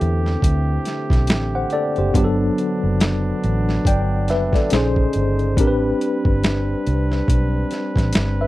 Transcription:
0.00 0.35 E2 loud
0.00 4.67 D3 medium
0.00 2.11 A3 medium
0.00 2.10 C4 medium
0.00 2.11 C4 medium
0.00 2.11 E4 medium
0.00 0.83 G4 medium
0.00 2.11 G4 medium
0.00 0.84 A4 medium
0.00 2.17 B4 soft
0.00 2.16 E5 medium
0.00 closed hi-hat medium
0.26 snare soft
0.42 0.77 D2 medium
0.42 kick loud
0.42 closed hi-hat medium
0.85 snare soft
0.85 closed hi-hat medium
1.10 1.30 B1 medium
1.10 kick medium
1.10 snare soft
1.10 closed hi-hat soft
1.27 1.63 A1 medium
1.27 snare loud
1.27 closed hi-hat medium
1.55 1.72 C5 medium
1.55 1.71 F#5 medium
1.70 1.96 A4 medium
1.70 1.96 D5 medium
1.70 closed hi-hat medium
1.96 2.11 F#1 medium
1.96 2.17 G4 medium
1.96 2.38 C5 medium
1.96 closed hi-hat soft
2.14 2.49 G1 loud
2.14 4.69 F#3 medium
2.14 4.68 F#3 medium
2.14 4.67 B3 medium
2.14 4.69 B3 medium
2.14 4.69 D4 medium
2.14 4.68 D4 medium
2.14 kick loud
2.14 closed hi-hat medium
2.18 2.24 G4 medium
2.24 3.87 A4 medium
2.58 closed hi-hat medium
2.83 3.31 F#1 medium
3.00 snare loud
3.00 closed hi-hat medium
3.44 3.78 A1 medium
3.44 closed hi-hat medium
3.69 snare soft
3.85 4.30 G1 medium
3.85 4.27 D5 medium
3.85 4.27 G5 medium
3.85 kick loud
3.85 closed hi-hat medium
4.28 4.49 F#1 medium
4.28 4.53 B4 medium
4.28 4.53 E5 medium
4.28 snare soft
4.28 closed hi-hat medium
4.53 4.95 A4 medium
4.53 4.95 D5 medium
4.53 kick medium
4.53 snare soft
4.53 closed hi-hat soft
4.70 5.06 A#1 medium
4.70 5.57 C#3 medium
4.70 5.57 G#3 medium
4.70 5.57 C#4 medium
4.70 5.57 D#4 medium
4.70 5.58 D#4 medium
4.70 5.58 G#4 medium
4.70 5.57 C5 medium
4.70 5.58 C5 medium
4.70 snare medium
4.70 closed hi-hat medium
4.96 kick medium
5.13 5.58 G1 medium
5.13 closed hi-hat medium
5.39 closed hi-hat soft
5.57 5.92 A1 loud
5.57 8.47 G3 medium
5.57 8.47 C4 medium
5.57 8.47 D4 medium
5.57 8.12 G4 medium
5.57 8.47 B4 medium
5.57 kick loud
5.57 closed hi-hat loud
5.61 5.67 A#4 medium
5.67 8.15 B4 medium
6.01 closed hi-hat medium
6.25 6.74 G1 medium
6.25 kick loud
6.44 snare loud
6.44 closed hi-hat medium
6.87 7.21 C2 medium
6.87 closed hi-hat medium
7.12 snare soft
7.28 7.63 B1 medium
7.28 kick loud
7.28 closed hi-hat medium
7.71 snare soft
7.71 closed hi-hat medium
7.96 8.11 A1 medium
7.96 kick medium
7.96 snare soft
7.96 closed hi-hat soft
8.13 8.47 G1 medium
8.13 snare loud
8.13 closed hi-hat medium
8.41 8.47 B4 medium
8.41 8.47 E5 medium

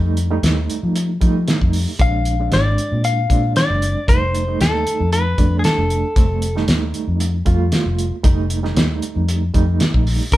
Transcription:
0.00 0.39 F2 medium
0.00 0.26 G3 medium
0.00 0.26 A3 medium
0.00 0.26 D#4 medium
0.17 closed hi-hat medium
0.31 1.09 G3 medium
0.31 1.10 A3 medium
0.31 1.10 D#4 medium
0.43 0.67 D#2 medium
0.43 snare loud
0.43 closed hi-hat medium
0.70 closed hi-hat medium
0.83 1.18 F3 medium
0.96 closed hi-hat medium
1.21 1.45 F3 medium
1.21 1.89 G3 medium
1.21 1.90 A3 medium
1.21 1.90 D#4 medium
1.21 kick medium
1.21 closed hi-hat medium
1.48 snare loud
1.48 closed hi-hat medium
1.61 1.85 F2 medium
1.61 kick medium
1.73 open hi-hat medium
1.99 2.47 A#1 medium
1.99 2.33 G#3 medium
1.99 2.34 C4 medium
1.99 2.34 D4 medium
1.99 2.53 F5 medium
1.99 kick loud
1.99 closed hi-hat medium
2.25 closed hi-hat medium
2.40 3.18 G#3 medium
2.40 3.19 C4 medium
2.40 3.19 D4 medium
2.52 2.76 G#1 medium
2.52 3.04 D5 medium
2.52 snare loud
2.52 closed hi-hat medium
2.78 closed hi-hat medium
2.92 3.27 A#2 medium
3.04 3.53 F5 medium
3.04 closed hi-hat medium
3.29 3.54 A#2 medium
3.29 3.97 G#3 medium
3.29 3.98 C4 medium
3.29 3.98 D4 medium
3.29 kick medium
3.29 closed hi-hat medium
3.56 4.09 D5 medium
3.56 snare loud
3.56 closed hi-hat medium
3.70 3.94 F#1 medium
3.82 closed hi-hat medium
4.07 4.56 F1 medium
4.07 4.42 G3 medium
4.07 4.42 A3 medium
4.07 4.42 D#4 medium
4.07 4.61 C5 medium
4.07 kick loud
4.07 closed hi-hat medium
4.35 closed hi-hat medium
4.47 5.26 G3 medium
4.47 5.26 A3 medium
4.47 5.27 D#4 medium
4.60 4.84 D#2 medium
4.60 5.12 A4 medium
4.60 snare loud
4.60 closed hi-hat medium
4.87 closed hi-hat medium
5.00 5.35 F2 medium
5.13 5.59 B4 medium
5.13 closed hi-hat medium
5.38 5.62 F2 medium
5.38 6.06 G3 medium
5.38 6.06 A3 medium
5.38 6.06 D4 medium
5.38 kick medium
5.38 closed hi-hat medium
5.59 5.65 G#4 soft
5.64 6.65 A4 medium
5.64 snare loud
5.64 closed hi-hat medium
5.78 6.02 F1 medium
5.90 closed hi-hat medium
6.16 6.64 F1 medium
6.16 6.50 G3 medium
6.16 6.51 A3 medium
6.16 6.51 C4 medium
6.16 kick loud
6.16 closed hi-hat medium
6.42 closed hi-hat medium
6.55 7.34 G3 medium
6.55 7.34 A3 medium
6.55 7.35 D#4 medium
6.55 snare soft
6.68 6.92 D#2 medium
6.68 snare loud
6.68 closed hi-hat medium
6.94 closed hi-hat soft
7.08 7.43 F2 medium
7.20 closed hi-hat medium
7.46 7.70 F2 loud
7.46 8.14 G3 medium
7.46 8.14 A3 medium
7.46 8.14 F4 loud
7.46 kick medium
7.46 closed hi-hat soft
7.72 snare medium
7.72 closed hi-hat medium
7.86 8.10 F1 medium
7.99 closed hi-hat medium
8.24 8.72 F1 medium
8.24 8.58 G3 medium
8.24 8.58 A3 medium
8.24 8.59 D#4 medium
8.24 kick loud
8.24 closed hi-hat medium
8.50 closed hi-hat medium
8.63 9.42 G3 medium
8.63 9.42 A3 medium
8.63 9.43 D#4 medium
8.63 snare soft
8.76 9.00 D#2 medium
8.76 snare loud
8.76 closed hi-hat medium
9.02 closed hi-hat medium
9.16 9.51 F2 medium
9.28 closed hi-hat medium
9.54 9.78 F2 medium
9.54 10.22 G3 medium
9.54 10.22 A3 medium
9.54 10.23 D#4 medium
9.54 kick medium
9.54 closed hi-hat medium
9.80 snare loud
9.80 closed hi-hat medium
9.94 10.18 A#1 medium
9.94 kick medium
10.07 open hi-hat medium
10.31 10.37 C2 loud
10.31 10.37 E3 medium
10.31 10.37 A#3 medium
10.31 10.37 D4 medium
10.31 10.37 A#4 medium
10.31 kick loud
10.31 closed hi-hat medium

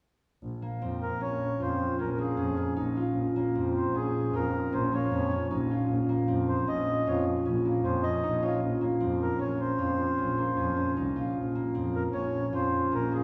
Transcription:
0.42 0.61 A#1 medium
0.62 2.18 A#3 medium
0.81 1.18 F2 medium
0.81 1.27 C4 medium
1.02 1.22 A#4 medium
1.21 1.58 A#1 medium
1.21 1.98 C#4 medium
1.21 1.62 C#5 medium
1.60 1.78 F2 medium
1.60 2.96 F4 medium
1.60 1.97 C5 medium
1.99 2.36 A#1 medium
1.99 2.37 C#4 medium
1.99 2.10 A#4 medium
2.12 2.19 A#4 soft
2.18 3.35 A#3 medium
2.18 2.74 G#4 medium
2.37 2.57 F2 medium
2.37 2.56 C#4 medium
2.57 3.61 C#4 medium
2.76 3.13 A#1 medium
2.76 5.47 D#4 medium
2.96 4.33 F4 medium
3.15 3.34 A#1 medium
3.36 4.92 A#3 medium
3.54 3.91 F2 medium
3.54 4.01 C4 medium
3.77 3.96 C5 medium
3.94 4.31 A#1 medium
3.94 4.72 C#4 medium
3.94 4.36 G#4 medium
4.33 4.52 F2 medium
4.33 5.70 F4 medium
4.33 4.74 A#4 medium
4.73 5.09 A#1 medium
4.73 5.11 C#4 medium
4.73 4.93 C5 medium
4.92 6.08 A#3 medium
4.92 5.48 C#5 medium
5.11 5.29 F2 medium
5.11 5.31 C#4 medium
5.31 6.34 C#4 medium
5.50 5.87 A#1 medium
5.50 8.21 D#4 medium
5.71 7.06 F4 medium
5.89 6.07 A#1 medium
6.09 7.65 A#3 medium
6.28 6.65 F2 medium
6.28 6.74 C4 medium
6.48 6.68 C5 medium
6.68 7.04 A#1 medium
6.68 7.45 C#4 medium
6.68 7.08 D#5 medium
7.06 7.25 F2 medium
7.06 8.42 F4 medium
7.06 7.25 C#5 medium
7.45 7.82 A#1 medium
7.45 7.84 C#4 medium
7.65 8.81 A#3 medium
7.84 8.02 F2 medium
7.84 8.03 C#4 medium
7.84 8.04 C5 medium
8.03 9.06 C#4 medium
8.03 8.44 D#5 medium
8.23 8.60 A#1 medium
8.23 10.94 D#4 medium
8.42 9.78 F4 medium
8.42 8.61 C#5 medium
8.63 8.81 A#1 medium
8.81 10.37 A#3 medium
9.00 9.38 F2 medium
9.00 9.45 C4 medium
9.21 9.39 A#4 medium
9.39 9.76 A#1 medium
9.39 10.17 C#4 medium
9.39 9.60 C#5 medium
9.61 10.93 C5 medium
9.78 9.97 F2 medium
9.78 11.15 F4 medium
10.18 10.55 A#1 medium
10.18 10.56 C#4 medium
10.38 11.55 A#3 medium
10.57 10.76 F2 medium
10.57 10.76 C#4 medium
10.77 11.81 C#4 medium
10.97 11.14 C2 medium
10.97 13.24 D#4 medium
11.16 11.34 A#1 medium
11.16 12.52 F4 medium
11.36 11.54 A#1 medium
11.55 13.11 A#3 medium
11.74 12.11 F2 medium
11.74 12.19 C4 medium
11.95 12.03 A#4 medium
12.13 12.50 A#1 medium
12.13 12.91 C#4 medium
12.13 12.53 C#5 medium
12.53 12.71 F2 medium
12.53 13.24 F4 medium
12.53 12.94 C5 medium
12.92 13.24 A#1 medium
12.92 13.24 C#4 medium
12.92 13.13 A#4 medium
13.11 13.24 A#3 medium
13.11 13.24 G#4 medium

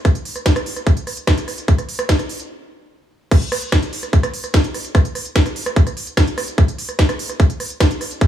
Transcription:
0.05 kick loud
0.05 cross-stick soft
0.05 closed hi-hat medium
0.15 closed hi-hat medium
0.25 open hi-hat loud
0.36 cross-stick soft
0.36 closed hi-hat medium
0.46 kick loud
0.46 snare loud
0.46 closed hi-hat medium
0.56 cross-stick medium
0.56 closed hi-hat medium
0.66 open hi-hat loud
0.76 cross-stick soft
0.76 closed hi-hat medium
0.87 kick loud
0.87 closed hi-hat medium
0.97 closed hi-hat medium
1.07 cross-stick soft
1.07 open hi-hat loud
1.17 closed hi-hat medium
1.27 kick loud
1.27 cross-stick medium
1.27 snare loud
1.27 closed hi-hat medium
1.38 closed hi-hat medium
1.48 cross-stick soft
1.48 open hi-hat loud
1.58 closed hi-hat medium
1.68 kick loud
1.68 closed hi-hat medium
1.78 cross-stick soft
1.78 closed hi-hat medium
1.89 open hi-hat loud
1.99 cross-stick medium
1.99 closed hi-hat medium
2.09 kick loud
2.09 snare loud
2.09 closed hi-hat medium
2.19 cross-stick soft
2.19 closed hi-hat medium
2.29 open hi-hat loud
2.40 closed hi-hat medium
3.31 kick loud
3.31 cross-stick soft
3.31 closed hi-hat medium
3.31 crash loud
3.42 closed hi-hat medium
3.52 cross-stick medium
3.52 open hi-hat loud
3.62 closed hi-hat medium
3.72 kick loud
3.72 cross-stick soft
3.72 snare loud
3.72 closed hi-hat medium
3.83 closed hi-hat medium
3.93 open hi-hat loud
4.03 cross-stick soft
4.03 closed hi-hat medium
4.13 kick loud
4.13 closed hi-hat medium
4.23 cross-stick medium
4.23 closed hi-hat medium
4.34 open hi-hat loud
4.44 cross-stick soft
4.44 closed hi-hat medium
4.54 kick loud
4.54 snare loud
4.54 closed hi-hat medium
4.64 closed hi-hat medium
4.74 cross-stick soft
4.74 open hi-hat loud
4.85 closed hi-hat medium
4.95 kick loud
4.95 cross-stick medium
4.95 closed hi-hat medium
5.05 closed hi-hat medium
5.15 cross-stick soft
5.15 open hi-hat loud
5.25 closed hi-hat medium
5.36 kick loud
5.36 snare loud
5.36 closed hi-hat medium
5.46 cross-stick soft
5.46 closed hi-hat medium
5.56 open hi-hat loud
5.66 cross-stick medium
5.66 closed hi-hat medium
5.76 kick loud
5.76 closed hi-hat medium
5.87 cross-stick soft
5.87 closed hi-hat medium
5.97 open hi-hat loud
6.07 closed hi-hat medium
6.17 kick loud
6.17 cross-stick soft
6.17 snare loud
6.17 closed hi-hat medium
6.27 closed hi-hat medium
6.38 cross-stick medium
6.38 open hi-hat loud
6.48 closed hi-hat medium
6.58 kick loud
6.58 cross-stick soft
6.58 closed hi-hat medium
6.68 closed hi-hat medium
6.78 open hi-hat loud
6.89 cross-stick soft
6.89 closed hi-hat medium
6.99 kick loud
6.99 snare loud
6.99 closed hi-hat medium
7.09 cross-stick medium
7.09 closed hi-hat medium
7.19 open hi-hat loud
7.29 cross-stick soft
7.29 closed hi-hat medium
7.40 kick loud
7.40 closed hi-hat medium
7.50 closed hi-hat medium
7.60 cross-stick soft
7.60 open hi-hat loud
7.70 closed hi-hat medium
7.80 kick loud
7.80 cross-stick medium
7.80 snare loud
7.80 closed hi-hat medium
7.91 closed hi-hat medium
8.01 cross-stick soft
8.01 open hi-hat loud
8.11 closed hi-hat medium
8.21 kick loud
8.21 closed hi-hat medium

